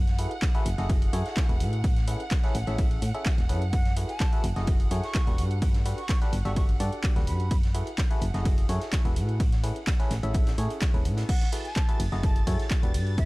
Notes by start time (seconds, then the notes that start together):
Already playing: F#2 F#5
0.07 snare, closed hi-hat
0.18 E4 F#4 G#4 A4 B4, closed hi-hat, open hi-hat
0.31 closed hi-hat
0.42 kick, snare, clap, closed hi-hat, ride
0.55 E4 F#4 G#4 A4 B4, closed hi-hat
0.65 F#1, closed hi-hat, open hi-hat
0.78 F#1 E4 F#4 G#4 A4 D#5, snare, closed hi-hat
0.90 kick, closed hi-hat, ride
1.02 open hi-hat
1.13 F#2 E4 F#4 G#4 A4 C#5, closed hi-hat, open hi-hat
1.26 snare, closed hi-hat
1.37 kick, snare, clap, closed hi-hat, ride
1.49 E1 E4 F#4 G#4 A4 B4, closed hi-hat
1.60 A2, closed hi-hat, open hi-hat
1.73 closed hi-hat
1.84 kick, closed hi-hat, ride
1.96 snare, closed hi-hat
2.08 C#4 E4 G#4 A4 B4, closed hi-hat, open hi-hat
2.20 closed hi-hat
2.31 kick, snare, clap, closed hi-hat, ride
2.44 C#4 E4 G#4 A4 B4, snare, closed hi-hat
2.54 A1, closed hi-hat, open hi-hat
2.67 A1 C#4 E4 G#4 A4 E5, snare, closed hi-hat
2.78 kick, closed hi-hat, ride
2.91 closed hi-hat
3.02 A2, closed hi-hat, open hi-hat
3.15 C#4 E4 G#4 A4 E5, closed hi-hat
3.26 kick, snare, clap, closed hi-hat, ride
3.38 E1, snare, closed hi-hat
3.49 F#2 C#4 E4 G#4 A4 B4, closed hi-hat, open hi-hat
3.62 closed hi-hat
3.73 F#5, kick, closed hi-hat, ride
3.85 snare, closed hi-hat
3.97 E4 F#4 G#4 A4 B4, closed hi-hat, open hi-hat
4.09 A5, closed hi-hat
4.20 kick, snare, clap, closed hi-hat, ride
4.33 E4 F#4 G#4 A4 B4, closed hi-hat
4.44 F#1, closed hi-hat, open hi-hat
4.56 F#1 E4 F#4 G#4 A4 D#5, snare, closed hi-hat
4.67 kick, closed hi-hat, ride
4.80 open hi-hat
4.91 F#2 E4 F#4 G#4 A4 C#5, closed hi-hat, open hi-hat
5.04 C#6, snare, closed hi-hat
5.15 kick, snare, clap, closed hi-hat, ride
5.27 E1 D4 F#4 G4 A4 B4, closed hi-hat
5.38 G2, closed hi-hat, open hi-hat
5.51 closed hi-hat
5.62 kick, closed hi-hat, ride
5.74 snare, closed hi-hat
5.86 D4 F#4 G4 A4 B4, closed hi-hat, open hi-hat
5.98 C#6, closed hi-hat
6.09 kick, snare, clap, closed hi-hat, ride
6.22 D4 F#4 G4 A4 B4, snare, closed hi-hat
6.32 G1, closed hi-hat, open hi-hat
6.45 G1 D4 F#4 G4 A4 E5 C#6, snare, closed hi-hat
6.56 C#6, kick, closed hi-hat, ride
6.69 closed hi-hat
6.80 G2 D4 F#4 G4 A4 D5, closed hi-hat, open hi-hat
6.93 closed hi-hat
7.03 kick, clap, closed hi-hat, ride
7.16 D1 D4 F#4 G4 A4 B4, snare, closed hi-hat
7.27 F#2 B5, closed hi-hat, open hi-hat
7.40 closed hi-hat
7.51 kick, closed hi-hat, ride
7.63 snare, closed hi-hat
7.74 E4 F#4 G#4 A4 B4, closed hi-hat, open hi-hat
7.87 closed hi-hat
7.98 kick, snare, clap, closed hi-hat, ride
8.10 E4 F#4 G#4 A4 B4, closed hi-hat
8.21 F#1, closed hi-hat, open hi-hat
8.34 F#1 E4 F#4 G#4 A4 D#5, snare, closed hi-hat
8.45 kick, closed hi-hat, ride
8.58 open hi-hat
8.69 F#2 E4 F#4 G#4 A4 C#5, closed hi-hat, open hi-hat
8.81 snare, closed hi-hat
8.93 kick, snare, clap, closed hi-hat, ride
9.05 E1 E4 F#4 G#4 A4 B4, closed hi-hat
9.16 A2, closed hi-hat, open hi-hat
9.29 closed hi-hat
9.40 kick, closed hi-hat, ride
9.52 snare, closed hi-hat
9.64 C#4 E4 G#4 A4 B4, closed hi-hat, open hi-hat
9.76 closed hi-hat
9.87 kick, snare, clap, closed hi-hat, ride
10.00 C#4 E4 G#4 A4 B4, snare, closed hi-hat
10.10 A1, snare, closed hi-hat, open hi-hat
10.23 A1 C#4 E4 G#4 A4 E5, closed hi-hat
10.34 kick, closed hi-hat, ride
10.46 snare, closed hi-hat, open hi-hat
10.58 A2 C#4 E4 G#4 A4 C#5, snare, open hi-hat
10.70 closed hi-hat
10.82 kick, snare, clap, closed hi-hat, ride
10.94 E1 C#4 E4 G#4 A4 B4, closed hi-hat
11.05 A2, closed hi-hat, open hi-hat
11.17 snare, closed hi-hat
11.29 F#5 A6, kick, closed hi-hat, crash
11.41 snare, closed hi-hat
11.53 E4 F#4 G#4 A4 B4, closed hi-hat, open hi-hat, ride
11.65 A5, closed hi-hat
11.75 kick, snare, clap, closed hi-hat
11.89 E4 F#4 G#4 A4 B4, closed hi-hat
12.00 F#1, closed hi-hat, open hi-hat, ride
12.12 F#1 E4 F#4 G#4 A4 D#5, snare, closed hi-hat
12.23 A5, kick, closed hi-hat
12.36 open hi-hat
12.47 F#2 E4 F#4 G#4 A4 C#5, kick, closed hi-hat, open hi-hat, ride
12.60 snare, closed hi-hat
12.71 kick, snare, clap, closed hi-hat
12.83 E1 D4 F#4 G4 A4 B4, closed hi-hat
12.94 G2, closed hi-hat, open hi-hat, ride
13.07 closed hi-hat
13.18 E5, kick, closed hi-hat